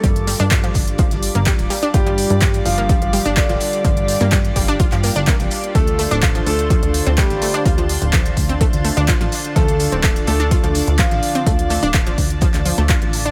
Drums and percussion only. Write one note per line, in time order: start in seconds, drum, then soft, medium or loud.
0.04 kick loud
0.04 closed hi-hat medium
0.16 closed hi-hat soft
0.27 open hi-hat loud
0.27 open hi-hat medium
0.40 closed hi-hat soft
0.51 kick loud
0.51 snare loud
0.51 clap loud
0.51 closed hi-hat medium
0.64 closed hi-hat soft
0.74 kick medium
0.74 closed hi-hat medium
0.74 open hi-hat loud
0.87 closed hi-hat soft
0.98 kick loud
0.98 closed hi-hat medium
1.11 snare soft
1.11 closed hi-hat soft
1.22 closed hi-hat medium
1.22 open hi-hat loud
1.35 closed hi-hat soft
1.46 kick loud
1.46 snare loud
1.46 clap loud
1.46 closed hi-hat medium
1.59 closed hi-hat soft
1.70 closed hi-hat medium
1.70 open hi-hat loud
1.83 closed hi-hat soft
1.94 kick loud
1.94 closed hi-hat medium
2.06 closed hi-hat soft
2.18 closed hi-hat medium
2.18 open hi-hat loud
2.30 closed hi-hat soft
2.41 kick loud
2.41 snare loud
2.41 clap loud
2.41 closed hi-hat medium
2.53 closed hi-hat soft
2.65 closed hi-hat medium
2.65 open hi-hat medium
2.78 closed hi-hat soft
2.89 kick loud
2.89 closed hi-hat loud
2.89 closed hi-hat medium
3.02 closed hi-hat soft
3.13 closed hi-hat medium
3.13 open hi-hat loud
3.26 closed hi-hat soft
3.36 kick loud
3.36 snare loud
3.36 clap loud
3.36 closed hi-hat medium
3.49 snare medium
3.49 closed hi-hat soft
3.60 closed hi-hat medium
3.60 open hi-hat medium
3.73 closed hi-hat soft
3.85 kick loud
3.85 closed hi-hat medium
3.97 closed hi-hat soft
4.08 open hi-hat loud
4.08 open hi-hat medium
4.20 closed hi-hat soft
4.32 kick loud
4.32 snare loud
4.32 clap loud
4.32 closed hi-hat medium
4.45 closed hi-hat soft
4.56 kick medium
4.56 closed hi-hat medium
4.56 open hi-hat loud
4.68 closed hi-hat soft
4.79 kick loud
4.79 closed hi-hat loud
4.79 closed hi-hat medium
4.92 snare soft
4.92 clap soft
4.92 closed hi-hat soft
5.03 closed hi-hat medium
5.03 open hi-hat loud
5.16 closed hi-hat soft
5.27 kick loud
5.27 snare loud
5.27 clap loud
5.27 closed hi-hat medium
5.40 closed hi-hat soft
5.51 closed hi-hat medium
5.51 open hi-hat medium
5.64 closed hi-hat soft
5.75 kick loud
5.75 closed hi-hat medium
5.87 closed hi-hat soft
5.99 closed hi-hat medium
5.99 open hi-hat loud
6.11 closed hi-hat soft
6.22 kick loud
6.22 snare loud
6.22 clap loud
6.22 closed hi-hat medium
6.35 closed hi-hat soft
6.46 closed hi-hat medium
6.46 open hi-hat medium
6.59 closed hi-hat soft
6.70 kick loud
6.70 closed hi-hat medium
6.83 closed hi-hat soft
6.94 closed hi-hat medium
6.94 open hi-hat loud
7.06 closed hi-hat soft
7.18 kick loud
7.18 snare loud
7.18 clap loud
7.18 closed hi-hat medium
7.30 snare medium
7.30 closed hi-hat soft
7.42 closed hi-hat medium
7.42 open hi-hat medium
7.53 closed hi-hat soft
7.65 kick loud
7.65 closed hi-hat loud
7.65 closed hi-hat medium
7.78 closed hi-hat soft
7.89 open hi-hat loud
7.89 open hi-hat medium
8.02 closed hi-hat soft
8.13 kick loud
8.13 snare loud
8.13 clap loud
8.13 closed hi-hat medium
8.26 closed hi-hat soft
8.37 kick medium
8.37 closed hi-hat medium
8.37 open hi-hat medium
8.49 closed hi-hat soft
8.61 kick loud
8.61 closed hi-hat medium
8.73 snare soft
8.73 closed hi-hat soft
8.84 closed hi-hat medium
8.84 open hi-hat loud
8.97 closed hi-hat soft
9.08 kick loud
9.08 snare loud
9.08 clap loud
9.08 closed hi-hat medium
9.21 closed hi-hat soft
9.32 closed hi-hat medium
9.32 open hi-hat medium
9.45 closed hi-hat soft
9.56 kick loud
9.56 closed hi-hat medium
9.68 closed hi-hat soft
9.79 closed hi-hat medium
9.79 open hi-hat loud
9.92 closed hi-hat soft
10.03 kick loud
10.03 snare loud
10.03 clap loud
10.03 closed hi-hat medium
10.16 closed hi-hat soft
10.27 closed hi-hat medium
10.27 open hi-hat medium
10.40 closed hi-hat soft
10.51 kick loud
10.51 closed hi-hat medium
10.64 closed hi-hat soft
10.75 closed hi-hat medium
10.75 open hi-hat loud
10.87 closed hi-hat soft
10.99 kick loud
10.99 snare loud
10.99 clap loud
10.99 closed hi-hat medium
11.11 snare medium
11.11 closed hi-hat soft
11.23 closed hi-hat medium
11.23 open hi-hat medium
11.35 closed hi-hat soft
11.46 kick loud
11.46 closed hi-hat medium
11.46 closed hi-hat loud
11.59 closed hi-hat soft
11.69 open hi-hat medium
11.69 open hi-hat loud
11.83 closed hi-hat soft
11.94 kick loud
11.94 snare loud
11.94 clap loud
11.94 closed hi-hat medium
12.06 closed hi-hat soft
12.18 kick medium
12.18 closed hi-hat medium
12.18 open hi-hat medium
12.30 closed hi-hat soft
12.41 kick loud
12.41 closed hi-hat medium
12.54 snare soft
12.54 clap soft
12.54 closed hi-hat soft
12.65 closed hi-hat medium
12.65 open hi-hat loud
12.78 closed hi-hat soft
12.89 kick loud
12.89 clap loud
12.89 closed hi-hat medium
13.02 closed hi-hat soft
13.13 closed hi-hat medium
13.13 open hi-hat medium
13.26 closed hi-hat soft